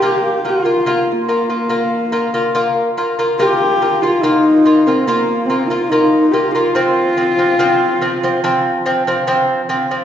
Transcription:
X:1
M:4/4
L:1/16
Q:1/4=72
K:none
V:1 name="Horsehead fiddle"
G2 F3 _B,8 z3 | G3 F _E3 C _B,2 C F E2 G F- | F8- F3 z4 z |]
V:2 name="Lute"
[_B,F]2 [B,F] [B,F] [B,F]2 [B,F] [B,F] [B,F]2 [B,F] [B,F] [B,F]2 [B,F] [B,F] | [_B,F]2 [B,F] [B,F] [B,F]2 [B,F] [B,F] [B,F]2 [B,F] [B,F] [B,F]2 [B,F] [B,F] | [F,C]2 [F,C] [F,C] [F,C]2 [F,C] [F,C] [F,C]2 [F,C] [F,C] [F,C]2 [F,C] [F,C] |]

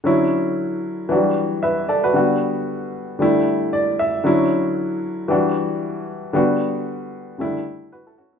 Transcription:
X:1
M:4/4
L:1/16
Q:"Swing 16ths" 1/4=114
K:D
V:1 name="Grand piano"
z12 [Be]2 [Ad] [FB]- | [FB] z8 z3 d2 e2 | z16 | z12 [FB] [EA] [CF] [B,E] |]
V:2 name="Grand piano" clef=bass
[D,F,CE]8 [E,F,G,DF]8 | [D,G,B,F]8 [D,G,A,E]8 | [D,F,CE]8 [E,G,DF]8 | [D,G,B,F]8 [C,D,G,A,E]8 |]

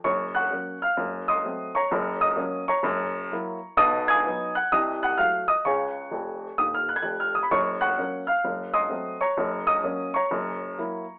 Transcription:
X:1
M:4/4
L:1/16
Q:"Swing" 1/4=129
K:F#
V:1 name="Upright piano"
[cc']2 [fc'f']4 [ee']4 [d=c'd']4 [^ca^c']2- | [cac']2 [dd']4 [cac']8- [cac']2 | [dd']2 [gd'g']4 [ff']2 [_e_e']2 [_g_g']2 [^e^e']2 [_e_e']2 | [cgc']8 d' e' f' g' f' e' d' b |
[cc']2 [fc'f']4 [ee']4 [d=c'd']4 [^ca^c']2- | [cac']2 [dd']4 [cac']8- [cac']2 |]
V:2 name="Upright piano" clef=bass
[F,,,F,,]4 [F,A,C]4 [F,,,F,,]4 [F,=A,=C]4 | [F,,,F,,]4 [F,A,C]4 [F,,,F,,]4 [F,A,=E]4 | [B,,,B,,]4 [F,B,D]4 [=C,,=C,]4 [_G,=A,_G]4 | [C,,C,]4 [E,,,E,,]4 [D,,,D,,]4 [E,,,E,,]4 |
[F,,,F,,]4 [F,A,C]4 [F,,,F,,]4 [F,=A,=C]4 | [F,,,F,,]4 [F,A,C]4 [F,,,F,,]4 [F,A,=E]4 |]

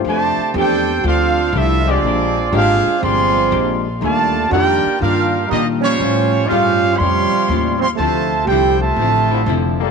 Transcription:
X:1
M:4/4
L:1/8
Q:"Swing" 1/4=121
K:F
V:1 name="Trumpet section"
[Gcda]2 [DAcg]2 [DAcf]2 [CFAe] [CF_Ad]- | [CF_Ad]2 [DAcf]2 [Adfc']3 z | [Gdfa]2 [FBdg]2 [DGBf]2 [B,FG_e] [G,Fc_d]- | [G,Fc_d]2 [^CG^B^e]2 [G^ce^b]3 [Gceb] |
[Fcea]2 [EAcg] [Fcea]4 z |]
V:2 name="Upright piano"
[A,DFGc]2 z6 | z8 | z8 | z8 |
z8 |]
V:3 name="Hollow-body jazz guitar"
[F,A,DG] z [F,A,DG] z [F,A,DG] z [F,A,DG] z | [B,,_A,DG] z [B,,A,DG] z [B,,A,DG] z [B,,A,DG] z | [_E,G,DF] z [E,G,DF] z [E,G,DF] z [E,G,DF] z | [A,,G,^C^E] z [A,,G,CE] z [A,,G,CE] z [A,,G,CE] z |
[D,F,CE] z [D,F,CE] z [D,F,CE] z [D,F,CE] z |]
V:4 name="Trombone section"
z6 z [D,_A,CG] | z2 [D,_A,CG] z4 z | z2 [_E,G,DF] z4 z | z2 [^C,G,A,^E] z4 z |
z4 z [D,F,CE] z [G,B,FA] |]
V:5 name="Trombone section"
[C,D,A,]2 [CDG]2 [CDF]2 E [F,_A,D]- | [F,_A,D]2 [A,DF]2 [F,A,C]3 z | [B,,D,A,]2 [B,DG]2 [B,DF]2 [G,B,_E] [F,G,_D]- | [F,G,_D]2 [G,^C^E]2 [^B,,^E,G,]3 [E,G,^B,] |
[C,F,A,]2 G [C,F,A,]4 z |]
V:6 name="Upright bass" clef=bass
F,, z E,,2 D,,2 C,,2 | B,,,2 _A,,, z G,,,2 B,,,2 | _E,,2 F,, z G,,2 B,,2 | A,,2 G,,2 ^E,, z _E,,2 |
D,,2 C,,2 A,,,2 F,,,2 |]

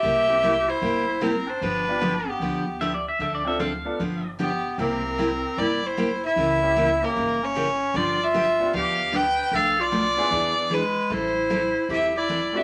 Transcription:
X:1
M:4/4
L:1/16
Q:"Swing" 1/4=152
K:Gmix
V:1 name="Pedal steel guitar"
z16 | z12 (3e2 d2 e2 | (3e2 d2 e2 f6- f z4 z | z16 |
z16 | z16 | z16 | z16 |]
V:2 name="Fiddle"
e6 c6 _B2 c2 | B6 G6 z4 | z12 G4 | _B8 d2 c4 e2- |
e6 ^A4 ^c6 | d2 e6 f4 g4 | f2 d8- d2 B4 | c8 e2 d4 e2 |]
V:3 name="Clarinet"
G6 E6 C2 D2 | D6 B,6 z4 | z12 B,4 | C8 E2 E4 E2- |
E6 ^A,4 ^C6 | F2 F6 G4 B4 | A2 F6 z4 ^G,4 | E8 G2 E4 G2 |]
V:4 name="Upright piano"
z2 [_B,CEG]2 z12 | z2 [B,DFG]2 z12 | z2 [CDFA]2 z2 [B,DFA]2 z8 | [_B,CEG]8- [B,CEG]2 z6 |
z2 [^A,^CEG]2 z2 [A,CEG]2 z8 | z6 [B,DFG]6 z4 | z6 [B,DE_A]6 z4 | z12 z2 [A,CD^F]2 |]
V:5 name="Steel-string acoustic guitar"
[C,G,_B,EG]2 z2 [C,G,B,EG]2 z2 [C,G,B,EG]2 z2 [C,G,B,EG]2 z2 | [D,F,B,DG]2 z2 [D,F,B,DG]2 z2 [D,F,B,DG]2 z2 [D,F,B,DG]2 z2 | [D,F,CDA]2 z2 [D,F,CDA]2 z2 [D,F,B,DG]2 z2 [D,F,B,DG]2 z2 | [C,G,_B,EG]2 z2 [C,G,B,EG]2 z2 [C,G,B,EG]2 z2 [C,G,B,EG]2 z2 |
[^C,E,^A,^CG]2 z2 [C,E,A,CG]2 z2 [C,E,A,CG]2 z2 [C,E,A,CG]2 z2 | [D,F,B,DG]2 z2 [D,F,B,DG]2 z2 [D,F,B,DG]2 z2 [D,F,B,DG]2 z2 | [B,,F,A,DA]2 z2 [B,,F,A,DA]2 z2 [E,B,D^G]2 z2 [E,B,DG]2 z2 | [E,G,CEA]2 z2 [E,G,CEA]2 z2 [E,G,CEA]2 z2 [E,G,CEA]2 z2 |]
V:6 name="Upright bass" clef=bass
C,,8 G,,,8 | G,,,8 D,,8 | D,,8 G,,,8 | C,,8 G,,,8 |
^C,,8 G,,,8 | G,,,8 D,,8 | B,,,8 E,,8 | A,,,8 E,,,8 |]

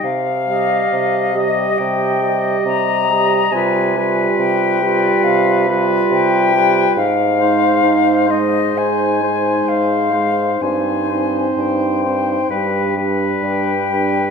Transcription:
X:1
M:4/4
L:1/8
Q:1/4=68
K:Cm
V:1 name="Flute"
f3 e g2 b2 | a2 g2 f z g2 | f3 e a2 f2 | a2 g3 z g2 |]
V:2 name="Oboe"
z e2 e2 e2 e | =B B2 B2 B2 B | z c2 c2 c2 c | c c2 c =B B2 B |]
V:3 name="Clarinet"
z G2 G2 G2 G | F F2 F2 F2 F | z E2 E2 E2 E | E E2 E D D2 D |]
V:4 name="French horn" clef=bass
z G,2 G,2 G,2 G, | G, G,2 G,2 G,2 G, | z A,2 A,2 A,2 A, | C C2 C G, G,2 G, |]
V:5 name="Bassoon" clef=bass
C,2 C,2 C,2 C,2 | C,2 C,2 C,2 C,2 | A,,2 A,,2 A,,2 A,,2 | G,,2 G,,2 G,,2 G,,2 |]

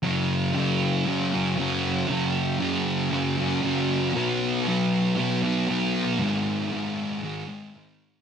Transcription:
X:1
M:4/4
L:1/8
Q:1/4=117
K:B
V:1 name="Distorted electric guitar" clef=bass
[F,,C,F,]2 [F,,C,F,]2 [F,,C,F,] [C,F,] [F,,C,F,]2 | [F,,C,F,]2 [F,,C,F,]2 [F,,C,F,] [C,F,] [F,,C,F,]2 | [B,,F,B,]2 [B,,F,B,]2 [B,,F,B,] [F,B,] [B,,F,B,]2 | [G,,D,G,]2 [G,,D,G,]2 [G,,D,G,] [D,G,] [G,,D,G,]2 |]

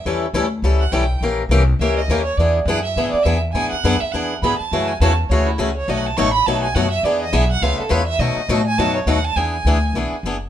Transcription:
X:1
M:4/4
L:1/8
Q:"Swing" 1/4=206
K:Emix
V:1 name="Violin"
z4 z f =g2 | z4 e ^d2 c | d z f e2 d e z | g f2 e f z b a- |
a g a z c E G c | (3^d f a c' b a g f e | d ^d e f ^e A c =e | ^d3 g a c f a |
g6 z2 |]
V:2 name="Steel-string acoustic guitar"
[E,=G,CEA] z [E,G,CEA] z [E,G,CEA] z [E,G,CEA] z | [E,^A,C=G^A] z [E,A,CGA] z [E,A,CGA] z [E,A,CGA] z | [E,B,DG] z [E,B,DG] z [E,B,DG] z [E,B,DG] z | [E,B,DG] z [E,B,DG] z [E,B,DG] z [E,B,DG] z |
[C,E,A,CF] z [C,E,A,CF] z [C,E,A,CF] z [C,E,A,CF] z | [B,,F,A,^DF] z [B,,F,A,DF] z [B,,F,A,DF] z [B,,F,A,DF] z | [E,B,DG] z [E,B,DG] z [C,A,B,^EB] z [C,A,B,EB] z | [B,,F,A,^DF] z [B,,F,A,DF] z [B,,F,A,DF] z [B,,F,A,DF] z |
[E,B,DG] z [E,B,DG] z [E,B,DG] z [E,B,DG] z |]
V:3 name="Upright bass" clef=bass
E,,2 D,,2 C,,2 B,,,2 | ^A,,,2 =C,,2 ^C,,2 ^D,,2 | E,,2 F,,2 G,, z E,,2 | G,, z F,, z E,,2 G,, z |
F,,2 E,,2 D,,2 C,,2 | B,,,2 A,,,2 B,,,2 F,,2 | E,,2 B,,,2 C,, z E,,2 | B,, z A,,2 F,,2 ^D,,2 |
E,,2 D,,2 B,,, z F,,,2 |]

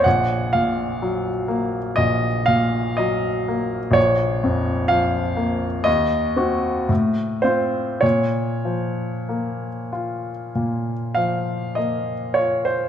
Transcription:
X:1
M:4/4
L:1/16
Q:1/4=59
K:Bbm
V:1 name="Grand piano"
g2 f6 e2 f2 e4 | d4 f4 e6 c2 | d8- d2 f2 e2 d c |]
V:2 name="Grand piano" clef=bass
B,,,2 B,,2 G,2 B,2 B,,,2 B,,2 G,2 B,2 | B,,,2 F,,2 F,2 B,2 E,,2 [CG]2 =A,,2 [CF]2 | B,,2 F,2 B,2 F2 B,,2 F,2 B,2 F2 |]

